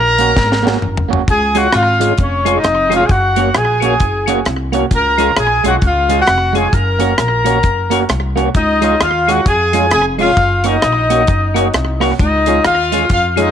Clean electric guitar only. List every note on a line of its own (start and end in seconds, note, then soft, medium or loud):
0.19 0.30 A#3 medium
0.19 0.31 C#4 medium
0.19 0.31 F#4 medium
0.63 0.75 A#3 medium
0.63 0.75 C#4 loud
0.63 0.76 F#4 loud
1.09 1.20 A#3 medium
1.09 1.21 C#4 medium
1.09 1.21 F#4 medium
1.55 1.66 G#3 medium
1.55 1.66 C#4 medium
1.55 1.67 F4 medium
2.00 2.11 G#3 medium
2.00 2.12 C#4 medium
2.00 2.12 F4 medium
2.45 2.57 G#3 medium
2.45 2.57 C#4 medium
2.45 2.58 F4 medium
2.90 3.02 G#3 medium
2.90 3.02 C#4 medium
2.90 3.03 F4 medium
3.37 3.48 A#3 medium
3.37 3.49 C#4 medium
3.37 3.49 F#4 medium
3.82 3.94 A#3 medium
3.82 3.94 C#4 medium
3.82 3.95 F#4 medium
4.28 4.39 A#3 medium
4.28 4.40 C#4 loud
4.28 4.40 F#4 medium
4.72 4.84 A#3 medium
4.72 4.85 C#4 medium
4.72 4.85 F#4 medium
5.18 5.30 G#3 medium
5.18 5.30 C#4 medium
5.18 5.31 F4 medium
5.64 5.75 G#3 medium
5.64 5.76 C#4 medium
5.64 5.76 F4 medium
6.09 6.21 G#3 medium
6.09 6.21 C#4 loud
6.09 6.22 F4 loud
6.53 6.65 G#3 medium
6.53 6.66 C#4 medium
6.53 6.66 F4 medium
6.99 7.11 A#3 medium
6.99 7.12 C#4 medium
6.99 7.12 F#4 medium
7.45 7.57 A#3 medium
7.45 7.57 C#4 medium
7.45 7.58 F#4 medium
7.90 8.02 A#3 medium
7.90 8.03 C#4 medium
7.90 8.03 F#4 loud
8.36 8.47 A#3 medium
8.36 8.48 C#4 medium
8.36 8.48 F#4 medium
8.81 8.93 G#3 medium
8.81 8.94 C#4 medium
8.81 8.94 F4 loud
9.28 9.39 G#3 medium
9.28 9.40 C#4 medium
9.28 9.40 F4 medium
9.73 9.85 G#3 medium
9.73 9.85 C#4 medium
9.73 9.85 F4 medium
10.18 10.30 G#3 medium
10.18 10.30 C#4 medium
10.18 10.31 F4 medium
10.64 10.76 A#3 medium
10.64 10.76 C#4 medium
10.64 10.77 F#4 medium
11.10 11.21 A#3 medium
11.10 11.21 C#4 medium
11.10 11.22 F#4 medium
11.55 11.66 A#3 medium
11.55 11.67 C#4 medium
11.55 11.67 F#4 loud
12.00 12.12 A#3 medium
12.00 12.12 C#4 medium
12.00 12.13 F#4 loud
12.47 12.58 G#3 medium
12.47 12.59 C#4 medium
12.47 12.59 F4 loud
12.92 13.03 G#3 medium
12.92 13.04 C#4 medium
12.92 13.04 F4 loud
13.37 13.49 G#3 medium
13.37 13.49 C#4 medium
13.37 13.50 F4 loud